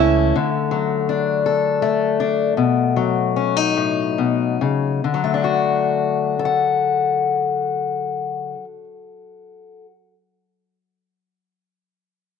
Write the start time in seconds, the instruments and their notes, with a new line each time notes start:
Already playing: fingered electric bass C#2, steel-string acoustic guitar E3 A3 A4
0.00 steel-string acoustic guitar C#4, five-string banjo E4
0.36 steel-string acoustic guitar D3
0.71 steel-string acoustic guitar F#3
1.09 steel-string acoustic guitar D4
1.46 steel-string acoustic guitar A4
1.82 steel-string acoustic guitar A3
2.20 steel-string acoustic guitar D4
2.57 steel-string acoustic guitar B2
2.96 steel-string acoustic guitar F#3
3.36 steel-string acoustic guitar C#4
3.56 steel-string acoustic guitar D#4
3.77 steel-string acoustic guitar A2
4.18 steel-string acoustic guitar B2
4.61 steel-string acoustic guitar C#3
5.04 steel-string acoustic guitar D3
5.14 steel-string acoustic guitar F#3
5.24 steel-string acoustic guitar A3
5.34 steel-string acoustic guitar D4
5.44 steel-string acoustic guitar F#4
6.39 steel-string acoustic guitar A4
6.45 steel-string acoustic guitar F#5